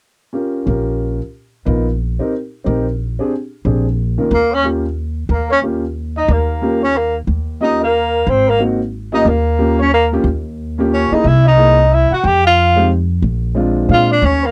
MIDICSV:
0, 0, Header, 1, 6, 480
1, 0, Start_track
1, 0, Tempo, 330579
1, 492, Time_signature, 3, 2, 24, 8
1, 21071, End_track
2, 0, Start_track
2, 0, Title_t, "Trumpet"
2, 0, Program_c, 0, 56
2, 6267, Note_on_c, 0, 70, 55
2, 6557, Note_on_c, 0, 73, 62
2, 6579, Note_off_c, 0, 70, 0
2, 6735, Note_off_c, 0, 73, 0
2, 7708, Note_on_c, 0, 70, 47
2, 7975, Note_off_c, 0, 70, 0
2, 7997, Note_on_c, 0, 73, 61
2, 8161, Note_off_c, 0, 73, 0
2, 8955, Note_on_c, 0, 75, 70
2, 9156, Note_on_c, 0, 70, 51
2, 9178, Note_off_c, 0, 75, 0
2, 9903, Note_off_c, 0, 70, 0
2, 9912, Note_on_c, 0, 73, 71
2, 10109, Note_on_c, 0, 70, 58
2, 10131, Note_off_c, 0, 73, 0
2, 10392, Note_off_c, 0, 70, 0
2, 11053, Note_on_c, 0, 75, 68
2, 11323, Note_off_c, 0, 75, 0
2, 11359, Note_on_c, 0, 70, 59
2, 12037, Note_on_c, 0, 72, 58
2, 12059, Note_off_c, 0, 70, 0
2, 12312, Note_on_c, 0, 70, 55
2, 12333, Note_off_c, 0, 72, 0
2, 12486, Note_off_c, 0, 70, 0
2, 13259, Note_on_c, 0, 75, 73
2, 13455, Note_on_c, 0, 70, 54
2, 13477, Note_off_c, 0, 75, 0
2, 14207, Note_off_c, 0, 70, 0
2, 14216, Note_on_c, 0, 73, 75
2, 14385, Note_off_c, 0, 73, 0
2, 14427, Note_on_c, 0, 70, 68
2, 14690, Note_off_c, 0, 70, 0
2, 15867, Note_on_c, 0, 73, 61
2, 16150, Note_on_c, 0, 75, 69
2, 16172, Note_off_c, 0, 73, 0
2, 16331, Note_on_c, 0, 76, 72
2, 16353, Note_off_c, 0, 75, 0
2, 16619, Note_off_c, 0, 76, 0
2, 16628, Note_on_c, 0, 75, 66
2, 17300, Note_on_c, 0, 76, 66
2, 17321, Note_off_c, 0, 75, 0
2, 17580, Note_off_c, 0, 76, 0
2, 17588, Note_on_c, 0, 78, 71
2, 17768, Note_on_c, 0, 79, 76
2, 17790, Note_off_c, 0, 78, 0
2, 18055, Note_off_c, 0, 79, 0
2, 18063, Note_on_c, 0, 77, 66
2, 18679, Note_off_c, 0, 77, 0
2, 20189, Note_on_c, 0, 77, 68
2, 20455, Note_off_c, 0, 77, 0
2, 20486, Note_on_c, 0, 74, 74
2, 20665, Note_on_c, 0, 73, 63
2, 20686, Note_off_c, 0, 74, 0
2, 20966, Note_on_c, 0, 70, 66
2, 20988, Note_off_c, 0, 73, 0
2, 21071, Note_off_c, 0, 70, 0
2, 21071, End_track
3, 0, Start_track
3, 0, Title_t, "Upright piano"
3, 0, Program_c, 1, 0
3, 476, Note_on_c, 1, 61, 41
3, 489, Note_on_c, 1, 65, 38
3, 489, Note_on_c, 1, 67, 40
3, 502, Note_on_c, 1, 70, 42
3, 932, Note_off_c, 1, 61, 0
3, 934, Note_off_c, 1, 65, 0
3, 951, Note_off_c, 1, 67, 0
3, 953, Note_off_c, 1, 70, 0
3, 954, Note_on_c, 1, 61, 45
3, 956, Note_on_c, 1, 65, 42
3, 973, Note_on_c, 1, 67, 41
3, 974, Note_on_c, 1, 70, 50
3, 1682, Note_off_c, 1, 61, 0
3, 1683, Note_off_c, 1, 65, 0
3, 1691, Note_off_c, 1, 67, 0
3, 1692, Note_off_c, 1, 70, 0
3, 2400, Note_on_c, 1, 59, 53
3, 2405, Note_on_c, 1, 63, 47
3, 2419, Note_on_c, 1, 65, 44
3, 2423, Note_on_c, 1, 70, 58
3, 2675, Note_off_c, 1, 59, 0
3, 2677, Note_off_c, 1, 63, 0
3, 2684, Note_off_c, 1, 65, 0
3, 2686, Note_off_c, 1, 70, 0
3, 3184, Note_on_c, 1, 60, 50
3, 3193, Note_on_c, 1, 63, 51
3, 3198, Note_on_c, 1, 67, 47
3, 3211, Note_on_c, 1, 70, 58
3, 3352, Note_off_c, 1, 60, 0
3, 3357, Note_off_c, 1, 63, 0
3, 3359, Note_off_c, 1, 67, 0
3, 3366, Note_off_c, 1, 70, 0
3, 3839, Note_on_c, 1, 60, 51
3, 3846, Note_on_c, 1, 63, 51
3, 3861, Note_on_c, 1, 67, 46
3, 3865, Note_on_c, 1, 70, 63
3, 4114, Note_off_c, 1, 60, 0
3, 4118, Note_off_c, 1, 63, 0
3, 4125, Note_off_c, 1, 67, 0
3, 4127, Note_off_c, 1, 70, 0
3, 4633, Note_on_c, 1, 60, 55
3, 4642, Note_on_c, 1, 62, 52
3, 4647, Note_on_c, 1, 67, 49
3, 4660, Note_on_c, 1, 68, 61
3, 4797, Note_off_c, 1, 60, 0
3, 4801, Note_off_c, 1, 62, 0
3, 4803, Note_off_c, 1, 67, 0
3, 4810, Note_off_c, 1, 68, 0
3, 5299, Note_on_c, 1, 62, 44
3, 5302, Note_on_c, 1, 60, 48
3, 5313, Note_on_c, 1, 67, 42
3, 5325, Note_on_c, 1, 68, 51
3, 5564, Note_off_c, 1, 62, 0
3, 5565, Note_off_c, 1, 60, 0
3, 5570, Note_off_c, 1, 67, 0
3, 5576, Note_off_c, 1, 68, 0
3, 6064, Note_on_c, 1, 51, 49
3, 6066, Note_on_c, 1, 58, 45
3, 6070, Note_on_c, 1, 61, 43
3, 6075, Note_on_c, 1, 65, 45
3, 6081, Note_on_c, 1, 70, 56
3, 6231, Note_off_c, 1, 51, 0
3, 6232, Note_off_c, 1, 58, 0
3, 6234, Note_off_c, 1, 61, 0
3, 6237, Note_off_c, 1, 65, 0
3, 6239, Note_off_c, 1, 70, 0
3, 6723, Note_on_c, 1, 58, 48
3, 6734, Note_on_c, 1, 61, 44
3, 6743, Note_on_c, 1, 65, 46
3, 6750, Note_on_c, 1, 67, 57
3, 6994, Note_off_c, 1, 58, 0
3, 7000, Note_off_c, 1, 61, 0
3, 7004, Note_off_c, 1, 65, 0
3, 7008, Note_off_c, 1, 67, 0
3, 8156, Note_on_c, 1, 58, 52
3, 8167, Note_on_c, 1, 61, 44
3, 8178, Note_on_c, 1, 65, 47
3, 8183, Note_on_c, 1, 67, 58
3, 8429, Note_off_c, 1, 58, 0
3, 8434, Note_off_c, 1, 61, 0
3, 8440, Note_off_c, 1, 65, 0
3, 8442, Note_off_c, 1, 67, 0
3, 9605, Note_on_c, 1, 58, 55
3, 9613, Note_on_c, 1, 61, 48
3, 9615, Note_on_c, 1, 65, 47
3, 9627, Note_on_c, 1, 67, 57
3, 9871, Note_off_c, 1, 58, 0
3, 9875, Note_off_c, 1, 61, 0
3, 9876, Note_off_c, 1, 65, 0
3, 9882, Note_off_c, 1, 67, 0
3, 11041, Note_on_c, 1, 58, 48
3, 11049, Note_on_c, 1, 61, 47
3, 11059, Note_on_c, 1, 65, 45
3, 11068, Note_on_c, 1, 67, 55
3, 11308, Note_off_c, 1, 58, 0
3, 11312, Note_off_c, 1, 61, 0
3, 11317, Note_off_c, 1, 65, 0
3, 11321, Note_off_c, 1, 67, 0
3, 12464, Note_on_c, 1, 58, 55
3, 12474, Note_on_c, 1, 60, 49
3, 12482, Note_on_c, 1, 63, 48
3, 12493, Note_on_c, 1, 66, 63
3, 12738, Note_off_c, 1, 58, 0
3, 12743, Note_off_c, 1, 60, 0
3, 12747, Note_off_c, 1, 63, 0
3, 12752, Note_off_c, 1, 66, 0
3, 13244, Note_on_c, 1, 58, 61
3, 13248, Note_on_c, 1, 61, 57
3, 13261, Note_on_c, 1, 65, 55
3, 13262, Note_on_c, 1, 67, 63
3, 13413, Note_off_c, 1, 58, 0
3, 13415, Note_off_c, 1, 61, 0
3, 13422, Note_off_c, 1, 65, 0
3, 13422, Note_off_c, 1, 67, 0
3, 13912, Note_on_c, 1, 58, 61
3, 13921, Note_on_c, 1, 61, 50
3, 13924, Note_on_c, 1, 65, 53
3, 13926, Note_on_c, 1, 67, 65
3, 14182, Note_off_c, 1, 58, 0
3, 14186, Note_off_c, 1, 61, 0
3, 14188, Note_off_c, 1, 65, 0
3, 14189, Note_off_c, 1, 67, 0
3, 14694, Note_on_c, 1, 58, 69
3, 14707, Note_on_c, 1, 61, 62
3, 14712, Note_on_c, 1, 65, 63
3, 14717, Note_on_c, 1, 67, 80
3, 14858, Note_off_c, 1, 58, 0
3, 14865, Note_off_c, 1, 61, 0
3, 14867, Note_off_c, 1, 65, 0
3, 14870, Note_off_c, 1, 67, 0
3, 15653, Note_on_c, 1, 58, 64
3, 15662, Note_on_c, 1, 61, 62
3, 15673, Note_on_c, 1, 65, 61
3, 15685, Note_on_c, 1, 67, 77
3, 16105, Note_off_c, 1, 58, 0
3, 16109, Note_off_c, 1, 61, 0
3, 16115, Note_off_c, 1, 65, 0
3, 16121, Note_off_c, 1, 67, 0
3, 16140, Note_on_c, 1, 58, 61
3, 16145, Note_on_c, 1, 63, 56
3, 16150, Note_on_c, 1, 64, 57
3, 16166, Note_on_c, 1, 68, 68
3, 16302, Note_off_c, 1, 58, 0
3, 16305, Note_off_c, 1, 63, 0
3, 16307, Note_off_c, 1, 64, 0
3, 16315, Note_off_c, 1, 68, 0
3, 16796, Note_on_c, 1, 58, 53
3, 16809, Note_on_c, 1, 63, 48
3, 16812, Note_on_c, 1, 64, 50
3, 16821, Note_on_c, 1, 68, 60
3, 17066, Note_off_c, 1, 58, 0
3, 17072, Note_off_c, 1, 63, 0
3, 17074, Note_off_c, 1, 64, 0
3, 17078, Note_off_c, 1, 68, 0
3, 18524, Note_on_c, 1, 56, 60
3, 18536, Note_on_c, 1, 60, 53
3, 18542, Note_on_c, 1, 63, 54
3, 18547, Note_on_c, 1, 67, 65
3, 18697, Note_off_c, 1, 56, 0
3, 18703, Note_off_c, 1, 60, 0
3, 18706, Note_off_c, 1, 63, 0
3, 18708, Note_off_c, 1, 67, 0
3, 19668, Note_on_c, 1, 56, 58
3, 19677, Note_on_c, 1, 60, 52
3, 19686, Note_on_c, 1, 62, 57
3, 19694, Note_on_c, 1, 65, 69
3, 20139, Note_off_c, 1, 56, 0
3, 20144, Note_off_c, 1, 60, 0
3, 20149, Note_off_c, 1, 62, 0
3, 20153, Note_off_c, 1, 65, 0
3, 20161, Note_on_c, 1, 56, 55
3, 20168, Note_on_c, 1, 60, 53
3, 20180, Note_on_c, 1, 62, 53
3, 20183, Note_on_c, 1, 65, 67
3, 20432, Note_off_c, 1, 56, 0
3, 20435, Note_off_c, 1, 60, 0
3, 20441, Note_off_c, 1, 62, 0
3, 20443, Note_off_c, 1, 65, 0
3, 21071, End_track
4, 0, Start_track
4, 0, Title_t, "Tenor saxophone"
4, 0, Program_c, 2, 66
4, 6306, Note_on_c, 2, 58, 70
4, 6600, Note_on_c, 2, 61, 88
4, 6622, Note_off_c, 2, 58, 0
4, 6756, Note_off_c, 2, 61, 0
4, 7745, Note_on_c, 2, 58, 57
4, 7995, Note_off_c, 2, 58, 0
4, 8020, Note_on_c, 2, 61, 80
4, 8119, Note_off_c, 2, 61, 0
4, 8972, Note_on_c, 2, 63, 72
4, 9184, Note_on_c, 2, 58, 56
4, 9206, Note_off_c, 2, 63, 0
4, 9930, Note_off_c, 2, 58, 0
4, 9939, Note_on_c, 2, 61, 79
4, 10131, Note_on_c, 2, 58, 61
4, 10152, Note_off_c, 2, 61, 0
4, 10403, Note_off_c, 2, 58, 0
4, 11088, Note_on_c, 2, 63, 70
4, 11341, Note_off_c, 2, 63, 0
4, 11376, Note_on_c, 2, 58, 72
4, 12055, Note_on_c, 2, 60, 70
4, 12077, Note_off_c, 2, 58, 0
4, 12344, Note_on_c, 2, 58, 79
4, 12365, Note_off_c, 2, 60, 0
4, 12502, Note_off_c, 2, 58, 0
4, 13285, Note_on_c, 2, 63, 74
4, 13489, Note_on_c, 2, 58, 59
4, 13511, Note_off_c, 2, 63, 0
4, 14240, Note_off_c, 2, 58, 0
4, 14261, Note_on_c, 2, 61, 83
4, 14409, Note_off_c, 2, 61, 0
4, 14431, Note_on_c, 2, 58, 74
4, 14599, Note_off_c, 2, 58, 0
4, 15888, Note_on_c, 2, 61, 68
4, 16174, Note_on_c, 2, 63, 76
4, 16196, Note_off_c, 2, 61, 0
4, 16376, Note_on_c, 2, 64, 84
4, 16398, Note_off_c, 2, 63, 0
4, 16645, Note_off_c, 2, 64, 0
4, 16664, Note_on_c, 2, 63, 90
4, 17338, Note_on_c, 2, 64, 77
4, 17360, Note_off_c, 2, 63, 0
4, 17607, Note_off_c, 2, 64, 0
4, 17626, Note_on_c, 2, 66, 74
4, 17811, Note_on_c, 2, 67, 84
4, 17833, Note_off_c, 2, 66, 0
4, 18084, Note_off_c, 2, 67, 0
4, 18106, Note_on_c, 2, 65, 96
4, 18702, Note_off_c, 2, 65, 0
4, 20228, Note_on_c, 2, 65, 73
4, 20476, Note_off_c, 2, 65, 0
4, 20509, Note_on_c, 2, 62, 77
4, 20702, Note_on_c, 2, 61, 70
4, 20723, Note_off_c, 2, 62, 0
4, 20996, Note_on_c, 2, 58, 88
4, 21018, Note_off_c, 2, 61, 0
4, 21071, Note_off_c, 2, 58, 0
4, 21071, End_track
5, 0, Start_track
5, 0, Title_t, "Upright bass"
5, 0, Program_c, 3, 32
5, 967, Note_on_c, 3, 34, 63
5, 1728, Note_off_c, 3, 34, 0
5, 2415, Note_on_c, 3, 34, 65
5, 3172, Note_off_c, 3, 34, 0
5, 3866, Note_on_c, 3, 34, 65
5, 4617, Note_off_c, 3, 34, 0
5, 5297, Note_on_c, 3, 34, 68
5, 6051, Note_off_c, 3, 34, 0
5, 6255, Note_on_c, 3, 39, 74
5, 7632, Note_off_c, 3, 39, 0
5, 7680, Note_on_c, 3, 39, 71
5, 9062, Note_off_c, 3, 39, 0
5, 9123, Note_on_c, 3, 39, 78
5, 10502, Note_off_c, 3, 39, 0
5, 10560, Note_on_c, 3, 39, 67
5, 11939, Note_off_c, 3, 39, 0
5, 12002, Note_on_c, 3, 32, 71
5, 13380, Note_off_c, 3, 32, 0
5, 13432, Note_on_c, 3, 39, 69
5, 14817, Note_off_c, 3, 39, 0
5, 14865, Note_on_c, 3, 39, 76
5, 16072, Note_off_c, 3, 39, 0
5, 16324, Note_on_c, 3, 36, 75
5, 17523, Note_off_c, 3, 36, 0
5, 17768, Note_on_c, 3, 41, 77
5, 19150, Note_off_c, 3, 41, 0
5, 19200, Note_on_c, 3, 34, 70
5, 20106, Note_off_c, 3, 34, 0
5, 20168, Note_on_c, 3, 46, 68
5, 20614, Note_off_c, 3, 46, 0
5, 20646, Note_on_c, 3, 39, 80
5, 21071, Note_off_c, 3, 39, 0
5, 21071, End_track
6, 0, Start_track
6, 0, Title_t, "Muted upright bass strokes"
6, 16135, Note_on_c, 9, 29, 32
6, 16280, Note_off_c, 9, 29, 0
6, 17581, Note_on_c, 9, 29, 34
6, 17727, Note_off_c, 9, 29, 0
6, 21071, End_track
0, 0, End_of_file